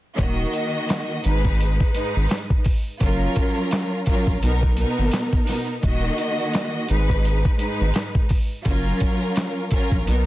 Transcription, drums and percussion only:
0.18 kick loud
0.18 closed hi-hat medium
0.53 closed hi-hat medium
0.89 snare loud
0.89 clap loud
0.89 closed hi-hat medium
1.24 closed hi-hat medium
1.45 kick medium
1.60 closed hi-hat medium
1.80 kick loud
1.95 closed hi-hat medium
2.29 snare loud
2.29 clap medium
2.29 closed hi-hat medium
2.50 kick loud
2.64 kick loud
2.64 open hi-hat medium
3.00 kick loud
3.00 closed hi-hat medium
3.36 kick medium
3.36 closed hi-hat medium
3.71 snare loud
3.71 clap medium
3.71 closed hi-hat loud
4.06 kick medium
4.06 closed hi-hat medium
4.27 kick medium
4.43 closed hi-hat loud
4.63 kick medium
4.77 closed hi-hat medium
5.11 snare loud
5.11 clap medium
5.11 closed hi-hat medium
5.33 kick medium
5.47 snare soft
5.47 open hi-hat medium
5.83 kick loud
5.83 closed hi-hat medium
6.18 closed hi-hat medium
6.54 snare loud
6.54 clap medium
6.54 closed hi-hat medium
6.88 closed hi-hat medium
7.09 kick medium
7.25 closed hi-hat medium
7.45 kick loud
7.59 closed hi-hat medium
7.94 snare loud
7.94 clap medium
7.94 closed hi-hat medium
8.15 kick medium
8.29 kick medium
8.29 open hi-hat medium
8.65 kick loud
8.65 closed hi-hat medium
9.00 kick medium
9.00 closed hi-hat medium
9.36 snare loud
9.36 clap medium
9.36 closed hi-hat medium
9.71 kick medium
9.71 closed hi-hat medium
9.92 kick medium
10.07 closed hi-hat medium

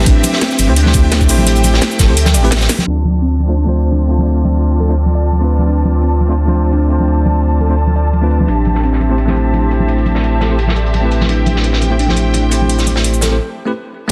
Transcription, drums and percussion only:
0.06 kick loud
0.06 closed hi-hat medium
0.23 closed hi-hat medium
0.23 ride medium
0.23 high conga medium
0.23 shaker medium
0.33 snare soft
0.41 snare loud
0.41 closed hi-hat medium
0.51 snare soft
0.51 shaker soft
0.59 closed hi-hat medium
0.59 ride medium
0.59 high conga medium
0.59 shaker medium
0.76 closed hi-hat loud
0.76 closed hi-hat medium
0.86 snare soft
0.86 high conga medium
0.93 kick loud
0.93 closed hi-hat medium
0.93 ride medium
0.93 shaker medium
1.12 snare loud
1.12 closed hi-hat loud
1.12 high conga medium
1.21 kick medium
1.21 shaker soft
1.29 closed hi-hat medium
1.29 open hi-hat medium
1.29 ride medium
1.29 shaker medium
1.38 high conga medium
1.47 closed hi-hat loud
1.47 closed hi-hat medium
1.55 closed hi-hat soft
1.55 shaker soft
1.64 closed hi-hat medium
1.64 ride medium
1.64 high conga medium
1.64 shaker medium
1.74 snare medium
1.81 snare loud
1.81 closed hi-hat medium
1.91 shaker soft
1.99 kick medium
1.99 snare medium
1.99 closed hi-hat medium
1.99 ride medium
1.99 high conga medium
1.99 shaker medium
2.17 closed hi-hat medium
2.17 closed hi-hat loud
2.25 snare soft
2.25 high conga medium
2.25 shaker soft
2.34 closed hi-hat medium
2.34 ride medium
2.34 shaker medium
2.44 closed hi-hat soft
2.51 snare medium
2.51 snare loud
2.51 closed hi-hat medium
2.51 closed hi-hat loud
2.51 high conga medium
2.56 snare medium
2.56 closed hi-hat medium
2.61 snare loud
2.61 closed hi-hat medium
2.61 shaker soft
2.69 snare loud
2.69 closed hi-hat medium
2.69 open hi-hat medium
2.69 ride medium
2.69 shaker medium
2.78 snare soft
2.78 high conga loud
2.87 closed hi-hat medium
2.87 crash medium
3.05 high conga medium
3.05 shaker medium
3.22 closed hi-hat medium
3.40 closed hi-hat medium
3.40 high conga medium
3.40 shaker medium
3.57 closed hi-hat medium
3.66 high conga medium
3.75 closed hi-hat medium
3.75 shaker medium
3.92 closed hi-hat medium
3.92 high conga medium
4.10 closed hi-hat medium
4.10 shaker medium
4.18 high conga medium
4.27 closed hi-hat medium
4.45 closed hi-hat medium
4.45 high conga medium
4.45 shaker medium
4.62 closed hi-hat medium
4.80 closed hi-hat medium
4.80 high conga medium
4.80 shaker medium
4.98 closed hi-hat medium
5.06 high conga medium
5.15 closed hi-hat medium
5.15 shaker medium
5.32 closed hi-hat medium
5.32 high conga medium
5.50 closed hi-hat medium
5.50 shaker medium
5.59 high conga medium
5.68 closed hi-hat medium
5.85 closed hi-hat medium
5.85 high conga medium
5.85 shaker medium
6.03 closed hi-hat medium
6.20 closed hi-hat medium
6.20 high conga medium
6.20 shaker medium
6.38 closed hi-hat medium
6.48 high conga medium
6.55 closed hi-hat medium
6.55 shaker medium
6.73 closed hi-hat medium
6.73 high conga medium
6.90 closed hi-hat medium
6.90 shaker medium
7.00 high conga medium
7.08 closed hi-hat medium
7.17 shaker soft
7.26 closed hi-hat medium
7.26 high conga loud
7.26 shaker medium
7.43 closed hi-hat medium
7.60 closed hi-hat medium
7.60 high conga medium
7.60 shaker soft
7.78 closed hi-hat medium
7.87 high conga medium
7.96 closed hi-hat medium
7.96 shaker medium
8.13 closed hi-hat medium
8.13 high conga medium
8.31 closed hi-hat medium
8.31 shaker medium
8.40 high conga medium
8.48 closed hi-hat medium
8.65 closed hi-hat medium
8.65 high conga medium
8.65 shaker medium
8.75 snare soft
8.83 closed hi-hat medium
8.93 snare soft
9.00 closed hi-hat medium
9.00 high conga medium
9.00 shaker soft
9.18 closed hi-hat medium
9.27 snare soft
9.27 high conga medium
9.36 closed hi-hat medium
9.36 shaker medium
9.53 closed hi-hat medium
9.53 high conga medium
9.71 closed hi-hat medium
9.71 shaker medium
9.80 high conga medium
9.88 closed hi-hat medium
9.98 closed hi-hat soft
10.06 closed hi-hat medium
10.06 high conga medium
10.06 shaker medium
10.15 snare soft
10.24 closed hi-hat medium
10.41 snare soft
10.41 closed hi-hat medium
10.41 high conga medium
10.41 shaker medium
10.59 closed hi-hat medium
10.67 snare soft
10.67 high conga medium
10.76 closed hi-hat medium
10.76 shaker medium
10.86 closed hi-hat soft
10.94 closed hi-hat medium
10.94 high conga medium
11.11 closed hi-hat medium
11.11 shaker medium
11.21 snare soft
11.21 high conga medium
11.29 closed hi-hat medium
11.46 closed hi-hat medium
11.46 high conga medium
11.46 shaker medium
11.56 snare soft
11.64 closed hi-hat medium
11.73 snare soft
11.82 closed hi-hat medium
11.82 high conga medium
11.82 shaker medium
11.99 closed hi-hat medium
12.08 snare soft
12.08 high conga medium
12.16 closed hi-hat medium
12.16 shaker medium
12.34 closed hi-hat medium
12.34 high conga soft
12.51 closed hi-hat medium
12.51 shaker medium
12.61 high conga medium
12.69 closed hi-hat medium
12.79 snare soft
12.79 shaker soft
12.87 closed hi-hat medium
12.87 high conga medium
12.87 shaker medium
12.96 snare medium
13.04 closed hi-hat medium
13.14 shaker soft
13.21 snare soft
13.21 closed hi-hat medium
13.21 high conga medium
13.21 shaker medium

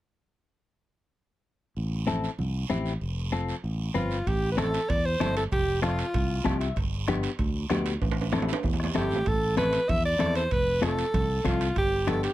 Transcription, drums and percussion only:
1.77 long guiro medium
2.08 high conga medium
2.08 short guiro medium
2.24 short guiro medium
2.38 high conga medium
2.38 long guiro medium
2.70 high conga medium
2.70 short guiro medium
2.86 short guiro medium
3.01 long guiro medium
3.33 high conga medium
3.33 short guiro medium
3.48 short guiro medium
3.64 long guiro medium
3.95 high conga medium
3.95 short guiro medium
4.11 short guiro medium
4.27 bombo low medium
4.27 high timbale medium
4.27 long guiro medium
4.58 bombo rim medium
4.58 high conga medium
4.58 high timbale medium
4.58 short guiro medium
4.74 high timbale medium
4.74 short guiro medium
4.89 bombo low medium
4.89 high timbale medium
4.89 long guiro medium
5.20 bombo rim medium
5.20 high conga medium
5.20 high timbale medium
5.20 low timbale medium
5.20 short guiro medium
5.37 high timbale medium
5.37 short guiro medium
5.52 bombo low medium
5.52 high timbale medium
5.52 long guiro medium
5.83 bombo rim medium
5.83 high conga medium
5.83 high timbale medium
5.83 short guiro medium
5.99 high timbale medium
5.99 short guiro medium
6.14 bombo low medium
6.14 high timbale medium
6.14 long guiro medium
6.45 bombo low medium
6.45 bombo rim medium
6.45 high conga medium
6.45 high timbale medium
6.45 low timbale medium
6.45 short guiro medium
6.61 high timbale medium
6.61 short guiro medium
6.76 bombo low medium
6.76 high timbale medium
6.76 long guiro medium
7.08 bombo rim medium
7.08 high conga medium
7.08 high timbale medium
7.08 short guiro medium
7.23 high timbale medium
7.23 short guiro medium
7.39 bombo low medium
7.39 high timbale medium
7.39 long guiro medium
7.70 bombo rim medium
7.70 high conga medium
7.70 high timbale medium
7.70 low timbale medium
7.70 short guiro medium
7.86 high timbale medium
7.86 short guiro medium
8.01 bombo low medium
8.01 high timbale medium
8.01 long guiro medium
8.11 high timbale medium
8.21 high timbale medium
8.32 bombo rim medium
8.32 high conga medium
8.32 high timbale medium
8.32 short guiro medium
8.42 low timbale loud
8.49 short guiro medium
8.53 high timbale loud
8.63 bombo low medium
8.63 low timbale medium
8.63 long guiro medium
8.74 low timbale medium
8.80 bombo rim medium
8.80 low timbale medium
8.94 bombo rim medium
8.94 high conga medium
8.94 low timbale medium
8.94 short guiro medium
9.11 short guiro medium
9.15 low timbale medium
9.26 bombo low medium
9.26 high timbale medium
9.26 long guiro medium
9.57 bombo rim medium
9.57 high conga medium
9.57 high timbale medium
9.57 short guiro medium
9.73 high timbale medium
9.73 short guiro medium
9.89 bombo low medium
9.89 high conga medium
9.89 high timbale medium
9.89 long guiro medium
10.20 bombo rim medium
10.20 high conga medium
10.20 high timbale medium
10.20 short guiro medium
10.35 high timbale medium
10.35 short guiro medium
10.51 bombo low medium
10.51 high timbale medium
10.51 long guiro medium
10.83 bombo rim medium
10.83 high conga medium
10.83 high timbale medium
10.83 short guiro medium
10.99 high timbale medium
10.99 short guiro medium
11.14 bombo low medium
11.14 high conga medium
11.14 high timbale medium
11.14 long guiro medium
11.45 bombo low medium
11.45 bombo rim medium
11.45 high conga medium
11.45 high timbale medium
11.45 short guiro medium
11.61 high timbale medium
11.61 short guiro medium
11.76 bombo low medium
11.76 high timbale medium
11.76 long guiro medium
12.07 bombo rim medium
12.07 high conga medium
12.07 high timbale medium
12.07 short guiro medium
12.23 high timbale medium
12.23 short guiro medium

